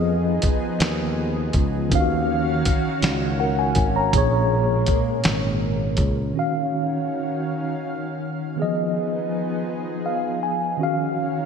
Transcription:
0.00 0.39 F2 loud
0.00 1.86 F3 medium
0.00 1.89 F3 medium
0.00 1.87 B3 medium
0.00 1.89 B3 medium
0.00 1.89 D#4 medium
0.00 1.88 G#4 medium
0.00 1.89 G#4 medium
0.00 1.89 D#5 medium
0.42 muted fretless electric bass stroke medium
0.42 kick medium
0.42 closed hi-hat medium
0.80 1.50 D#2 loud
0.80 snare loud
0.80 closed hi-hat medium
1.53 1.88 C#2 medium
1.53 kick medium
1.53 closed hi-hat medium
1.89 2.61 D#2 loud
1.89 4.08 D#3 medium
1.89 4.11 D#3 medium
1.89 6.31 C#4 medium
1.89 4.09 C#4 medium
1.89 4.11 F#4 medium
1.89 4.11 F5 medium
1.89 kick loud
1.89 closed hi-hat medium
1.93 1.99 F4 medium
1.93 3.38 F5 medium
2.00 4.14 F#4 medium
2.65 muted fretless electric bass stroke medium
2.65 kick medium
2.65 closed hi-hat medium
3.02 3.73 C#2 loud
3.02 snare loud
3.02 closed hi-hat medium
3.40 3.57 A#4 medium
3.40 3.57 F#5 medium
3.59 3.93 G#5 medium
3.75 4.10 G#1 medium
3.75 kick medium
3.75 closed hi-hat medium
3.96 4.16 C#5 medium
3.96 4.31 A#5 medium
4.12 4.84 A#1 medium
4.12 6.31 A#2 medium
4.12 6.34 G#3 medium
4.12 6.31 A#3 medium
4.12 6.34 A#3 medium
4.12 6.32 G#4 medium
4.12 kick loud
4.12 closed hi-hat medium
4.18 6.34 C#5 medium
4.86 muted fretless electric bass stroke soft
4.86 kick medium
4.86 closed hi-hat medium
5.24 5.95 G#1 loud
5.24 snare loud
5.24 closed hi-hat medium
5.97 6.32 C#2 medium
5.97 kick medium
5.97 closed hi-hat medium
6.34 8.53 D#3 medium
6.34 8.56 D#3 medium
6.34 8.54 C#4 medium
6.34 8.56 C#4 medium
6.34 8.55 F#4 medium
6.34 8.55 F5 medium
6.39 8.55 F5 medium
8.56 8.63 D#3 medium
8.56 10.78 F3 medium
8.56 10.78 B3 medium
8.56 10.76 B3 medium
8.56 10.78 D#4 medium
8.56 10.78 G#4 medium
8.56 10.77 G#4 medium
8.62 10.78 F3 medium
8.62 10.78 D#5 medium
10.06 10.40 F5 medium
10.43 10.77 G#5 medium
10.77 11.46 D#3 medium
10.77 11.46 C#4 medium
10.77 11.46 F#4 medium
10.81 11.46 D#3 medium
10.81 11.46 F#4 medium
10.81 11.46 F5 medium

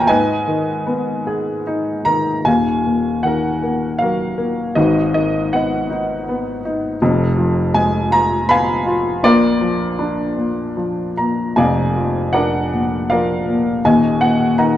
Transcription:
0.00 0.11 D#2 medium
0.00 0.11 A#2 medium
0.00 0.11 A#4 medium
0.00 0.11 C#5 medium
0.00 0.11 G5 loud
0.00 0.07 G#5 medium
0.00 0.02 A#5 loud
0.00 0.11 A#5 medium
0.07 2.42 G#2 medium
0.07 1.62 B4 medium
0.07 1.62 D#5 medium
0.07 1.61 G#5 medium
0.48 2.02 D#3 medium
0.86 2.42 B3 medium
1.27 2.43 G#4 medium
1.67 2.44 D#4 medium
2.05 2.45 D#3 medium
2.05 2.47 A#5 loud
2.45 4.73 D#1 medium
2.45 4.73 D#2 medium
2.45 3.60 F5 medium
2.45 3.26 G#5 medium
2.86 4.35 A#2 soft
3.23 4.73 D#3 soft
3.23 4.01 A#4 medium
3.23 4.03 F#5 medium
3.63 4.36 A#3 soft
3.99 4.75 F#3 soft
3.99 4.74 A#4 medium
3.99 4.78 F5 medium
4.38 4.75 A#3 medium
4.75 6.96 G#1 medium
4.75 6.96 G#2 medium
4.75 5.87 F#4 medium
4.75 5.54 B4 soft
4.75 5.13 D#5 medium
5.14 6.60 D#3 soft
5.14 5.54 D#5 medium
5.53 6.27 B3 soft
5.53 6.62 B4 soft
5.53 6.62 D#5 soft
5.53 6.23 F#5 medium
5.90 6.64 D#4 soft
6.29 6.99 B3 medium
6.65 7.00 D#4 medium
7.02 9.20 F1 medium
7.02 9.20 F2 medium
7.38 8.82 F3 medium
7.74 9.20 G#3 medium
7.74 8.12 G#5 medium
8.11 8.85 F4 medium
8.11 8.50 A#5 loud
8.49 9.22 B3 soft
8.49 9.21 F5 medium
8.49 9.21 G#5 medium
8.49 9.26 B5 loud
8.86 9.23 F4 medium
9.23 11.52 A#1 medium
9.23 10.36 A#2 medium
9.23 11.13 F4 medium
9.23 11.13 A#4 medium
9.23 11.12 D5 medium
9.61 10.75 F3 soft
9.99 11.52 D4 soft
10.37 11.17 A#2 soft
10.77 11.95 F3 soft
11.17 12.68 A#2 soft
11.17 11.58 A#5 medium
11.56 13.80 F1 medium
11.56 13.80 F2 medium
11.56 12.33 D5 medium
11.56 12.69 F5 medium
11.56 12.36 G#5 medium
11.96 13.10 F3 soft
12.33 13.80 D4 soft
12.33 13.10 A#4 soft
12.33 13.09 D5 soft
12.33 13.11 F#5 medium
12.73 13.47 A#2 soft
13.10 13.82 F3 soft
13.10 13.80 A#4 medium
13.10 13.80 D5 medium
13.10 13.86 F5 medium
13.49 13.83 A#2 medium
13.85 14.77 D#1 medium
13.85 14.77 D#2 medium
13.85 14.57 D#5 medium
13.85 14.22 G#5 medium
14.21 14.77 A#2 medium
14.21 14.57 F#5 medium
14.58 14.77 D#3 soft
14.58 14.77 D#5 medium
14.58 14.77 F#5 medium
14.58 14.77 A#5 medium

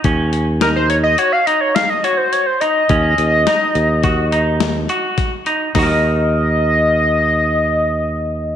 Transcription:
0.04 1.15 D#2 medium
0.04 0.46 C#4 medium
0.04 kick medium
0.04 closed hi-hat medium
0.33 closed hi-hat medium
0.61 1.03 D#4 medium
0.61 0.68 A#4 medium
0.61 0.68 F6 medium
0.61 snare loud
0.61 closed hi-hat medium
0.76 0.89 C5 medium
0.76 0.89 G6 medium
0.90 0.96 C#5 medium
0.90 0.96 G#6 medium
0.90 closed hi-hat medium
1.04 1.20 D#5 medium
1.04 1.20 A#6 medium
1.18 1.39 F#4 medium
1.18 1.34 C#5 medium
1.18 1.34 G#6 medium
1.18 closed hi-hat medium
1.32 1.48 F5 medium
1.32 1.48 C7 medium
1.46 1.88 D#4 medium
1.46 1.62 D#5 medium
1.46 1.62 A#6 medium
1.46 closed hi-hat medium
1.61 1.76 C#5 medium
1.61 1.76 G#6 medium
1.75 1.91 F5 loud
1.75 1.91 C7 loud
1.75 snare loud
1.75 closed hi-hat medium
1.89 2.05 D#5 loud
1.89 2.05 A#6 loud
2.04 2.45 F#4 medium
2.04 2.19 C#5 medium
2.04 2.19 G#6 medium
2.04 closed hi-hat medium
2.17 2.34 C5 medium
2.17 2.34 G6 medium
2.32 2.48 C#5 medium
2.32 2.48 G#6 medium
2.32 closed hi-hat medium
2.46 2.62 C5 medium
2.46 2.62 G6 medium
2.60 2.82 D#4 medium
2.60 5.18 D#5 loud
2.60 5.18 A#6 loud
2.60 closed hi-hat medium
2.89 3.15 D#2 medium
2.89 3.31 C#4 medium
2.89 kick loud
2.89 closed hi-hat medium
3.18 3.44 D#2 medium
3.18 closed hi-hat medium
3.47 3.88 D#4 medium
3.47 snare loud
3.47 closed hi-hat medium
3.75 4.86 D#2 medium
3.75 closed hi-hat medium
4.03 4.25 F#4 medium
4.03 kick medium
4.03 snare soft
4.03 closed hi-hat medium
4.32 4.74 D#4 medium
4.32 closed hi-hat medium
4.60 snare loud
4.60 closed hi-hat medium
4.89 5.31 F#4 medium
4.89 closed hi-hat medium
5.18 kick loud
5.18 snare soft
5.18 closed hi-hat medium
5.46 5.67 D#4 medium
5.46 closed hi-hat medium
5.75 8.56 D#2 medium
5.75 8.56 D#4 medium
5.75 5.86 F#4 medium
5.75 8.56 D#5 loud
5.75 8.56 A#6 loud
5.75 kick medium
5.75 snare medium
5.75 open hi-hat medium
5.83 8.56 A#4 medium
5.83 8.56 D#5 medium

